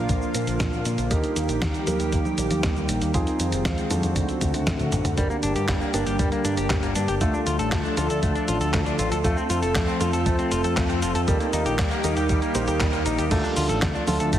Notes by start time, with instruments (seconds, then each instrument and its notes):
Already playing: analog synth pad D3 F3 A#3 F4, grand piano A#3 D4 F4 A#4
0.09 picked electric bass A#1, kick, closed hi-hat, cabasa
0.22 cabasa
0.35 picked electric bass A#2, closed hi-hat, cabasa
0.47 picked electric bass A#1, closed hi-hat, cabasa
0.60 picked electric bass A#1, kick, snare, closed hi-hat, cabasa
0.73 picked electric bass A#1, cabasa
0.85 picked electric bass A#2, closed hi-hat, cabasa
0.98 picked electric bass A#1, closed hi-hat, cabasa
1.11 picked electric bass D#2, analog synth pad D#3 G3 G4, grand piano A#3 D#4 G4 A#4, kick, closed hi-hat, cabasa
1.24 closed hi-hat, cabasa
1.36 picked electric bass D#2, closed hi-hat, cabasa
1.49 picked electric bass A#1, closed hi-hat, cabasa
1.62 picked electric bass D#2, kick, snare, closed hi-hat, cabasa
1.74 closed hi-hat, cabasa
1.87 picked electric bass D#2, grand piano A#3 D#4 G4 A#4, closed hi-hat, high conga, cabasa
2.00 picked electric bass D#2, closed hi-hat, cabasa
2.12 picked electric bass D#2, kick, closed hi-hat, cabasa
2.25 high conga, cabasa
2.38 picked electric bass A#1, closed hi-hat, cabasa
2.51 picked electric bass D#2, closed hi-hat, high conga, cabasa
2.63 picked electric bass D#2, kick, snare, closed hi-hat, cabasa
2.76 picked electric bass D#2, cabasa
2.89 picked electric bass A#1, closed hi-hat, cabasa
3.02 picked electric bass D#2, closed hi-hat, cabasa
3.14 picked electric bass F2, analog synth pad G#3 C4 F4, grand piano C4 D#4 F4 G#4, kick, closed hi-hat, cabasa
3.27 closed hi-hat, cabasa
3.40 picked electric bass F2, closed hi-hat, cabasa
3.52 picked electric bass F1, closed hi-hat, cabasa
3.65 picked electric bass F2, kick, snare, closed hi-hat, cabasa
3.78 closed hi-hat, cabasa
3.90 picked electric bass F2, grand piano C4 D4 F#4 A4, closed hi-hat, high conga, cabasa
4.03 picked electric bass F2, closed hi-hat, high conga, cabasa
4.16 picked electric bass D2, analog synth pad D3 A3 F#4, kick, closed hi-hat, cabasa
4.29 closed hi-hat, cabasa
4.41 picked electric bass D2, kick, closed hi-hat, high tom, cabasa
4.54 picked electric bass D2, closed hi-hat, high tom, cabasa
4.67 picked electric bass D2, kick, snare, closed hi-hat, mid tom, cabasa
4.79 picked electric bass D2, closed hi-hat, mid tom, cabasa
4.92 picked electric bass A1, closed hi-hat, mid tom, cabasa
5.05 picked electric bass D2, closed hi-hat, mid tom, cabasa
5.18 picked electric bass G1, analog synth pad D3 G3 A#3 G4, clean electric guitar G3, grand piano A#3 D4 G4 A#4, kick, closed hi-hat, cabasa
5.30 clean electric guitar A#3, cabasa
5.43 picked electric bass G1, clean electric guitar D4, closed hi-hat, cabasa
5.56 picked electric bass G2, clean electric guitar G4, closed hi-hat, cabasa
5.68 picked electric bass G1, clean electric guitar G3, kick, snare, clap, closed hi-hat, cabasa
5.81 clean electric guitar A#3, cabasa
5.94 picked electric bass G1, grand piano A#3 D4 G4 A#4, clean electric guitar D4, closed hi-hat, high conga, cabasa
6.06 picked electric bass G1, clean electric guitar G4, closed hi-hat, cabasa
6.19 picked electric bass G1, clean electric guitar G3, kick, closed hi-hat, cabasa
6.32 clean electric guitar A#3, closed hi-hat, high conga, cabasa
6.45 picked electric bass G2, clean electric guitar D4, closed hi-hat, cabasa
6.57 picked electric bass G1, clean electric guitar G4, closed hi-hat, high conga, cabasa
6.70 picked electric bass G1, clean electric guitar G3, kick, snare, clap, closed hi-hat, cabasa
6.83 picked electric bass G1, clean electric guitar A#3, closed hi-hat, cabasa
6.95 picked electric bass G2, clean electric guitar D4, closed hi-hat, cabasa
7.08 picked electric bass G1, clean electric guitar G4, closed hi-hat, cabasa
7.21 picked electric bass D2, analog synth pad F3 A3 D4 A4, clean electric guitar A3, grand piano A3 D4 F4 A4, kick, closed hi-hat, cabasa
7.34 clean electric guitar D4, cabasa
7.46 picked electric bass D2, clean electric guitar F4, closed hi-hat, cabasa
7.59 picked electric bass A1, clean electric guitar A4, closed hi-hat, cabasa
7.72 picked electric bass D2, clean electric guitar A3, kick, snare, clap, closed hi-hat, cabasa
7.85 clean electric guitar D4, cabasa
7.97 picked electric bass D2, grand piano A3 D4 F4 A4, clean electric guitar F4, closed hi-hat, high conga, cabasa
8.10 picked electric bass D2, clean electric guitar A4, closed hi-hat, cabasa
8.23 picked electric bass D2, clean electric guitar A3, kick, closed hi-hat, cabasa
8.35 clean electric guitar D4, closed hi-hat, cabasa
8.48 picked electric bass A1, clean electric guitar F4, closed hi-hat, cabasa
8.61 picked electric bass D2, clean electric guitar A4, closed hi-hat, cabasa
8.73 picked electric bass D2, clean electric guitar A3, kick, snare, clap, closed hi-hat, cabasa
8.86 picked electric bass D2, clean electric guitar D4, closed hi-hat, cabasa
8.99 picked electric bass A1, clean electric guitar F4, closed hi-hat, cabasa
9.12 picked electric bass D2, clean electric guitar A4, closed hi-hat, cabasa
9.24 picked electric bass F2, clean electric guitar A3, grand piano A3 C4 F4 A4, analog synth pad C4 A4, kick, closed hi-hat, cabasa
9.37 clean electric guitar C4, cabasa
9.50 picked electric bass F2, clean electric guitar F4, closed hi-hat, cabasa
9.62 picked electric bass F1, clean electric guitar A4, closed hi-hat, cabasa
9.75 picked electric bass F2, clean electric guitar A3, kick, snare, clap, closed hi-hat, cabasa
9.88 clean electric guitar C4, cabasa
10.00 picked electric bass F2, grand piano A3 C4 F4 A4, clean electric guitar F4, closed hi-hat, high conga, cabasa
10.13 picked electric bass F2, clean electric guitar A4, closed hi-hat, cabasa
10.26 picked electric bass F2, clean electric guitar A3, kick, closed hi-hat, cabasa
10.39 clean electric guitar C4, closed hi-hat, high conga, cabasa
10.51 picked electric bass F1, clean electric guitar F4, closed hi-hat, cabasa
10.64 picked electric bass F2, clean electric guitar A4, closed hi-hat, high conga, cabasa
10.77 picked electric bass F2, clean electric guitar A3, kick, snare, clap, closed hi-hat, cabasa
10.89 picked electric bass F2, clean electric guitar C4, closed hi-hat, cabasa
11.02 picked electric bass F1, clean electric guitar F4, closed hi-hat, cabasa
11.15 picked electric bass F2, clean electric guitar A4, closed hi-hat, cabasa
11.28 picked electric bass D#2, analog synth pad D#3 G3 A#3 G4, clean electric guitar G3, grand piano A#3 D#4 G4 A#4, kick, closed hi-hat, cabasa
11.40 clean electric guitar A#3, closed hi-hat, cabasa
11.53 picked electric bass D#2, clean electric guitar D#4, closed hi-hat, cabasa
11.66 picked electric bass A#1, clean electric guitar G4, closed hi-hat, cabasa
11.79 picked electric bass D#2, clean electric guitar G3, kick, snare, clap, closed hi-hat, cabasa
11.91 clean electric guitar A#3, closed hi-hat, cabasa
12.04 picked electric bass D#2, grand piano A#3 D#4 G4 A#4, clean electric guitar D#4, closed hi-hat, high conga, cabasa
12.17 picked electric bass D#2, clean electric guitar G4, closed hi-hat, cabasa
12.29 picked electric bass D#2, clean electric guitar G3, kick, closed hi-hat, cabasa
12.42 clean electric guitar A#3, closed hi-hat, cabasa
12.55 picked electric bass A#1, grand piano A#3 D#4 G4 C5, clean electric guitar D#4, closed hi-hat, cabasa
12.68 picked electric bass D#2, grand piano A#3 D#4 G4 A#4, clean electric guitar G4, closed hi-hat, cabasa
12.80 picked electric bass D#2, clean electric guitar G3, kick, snare, clap, closed hi-hat, cabasa
12.93 picked electric bass D#2, clean electric guitar A#3, closed hi-hat, cabasa
13.06 picked electric bass A#1, clean electric guitar D#4, closed hi-hat, cabasa
13.18 picked electric bass D#2, clean electric guitar G4, closed hi-hat, cabasa
13.31 picked electric bass D2, analog synth pad F3 A3 D4 A4, clean electric guitar A3, grand piano A3 D4 F4 A4, kick, closed hi-hat, crash, cabasa
13.44 clean electric guitar D4, cabasa
13.57 picked electric bass D2, clean electric guitar F4, open hi-hat, cabasa
13.69 picked electric bass A1, clean electric guitar A4, closed hi-hat, cabasa
13.82 picked electric bass D2, clean electric guitar A3, kick, snare, clap, closed hi-hat, cabasa
13.95 clean electric guitar D4, cabasa
14.07 picked electric bass D2, grand piano A3 D4 F4 A4, clean electric guitar F4, open hi-hat, high conga, cabasa
14.20 picked electric bass D2, clean electric guitar A4, closed hi-hat, cabasa
14.33 picked electric bass D2, clean electric guitar A3, kick, closed hi-hat, cabasa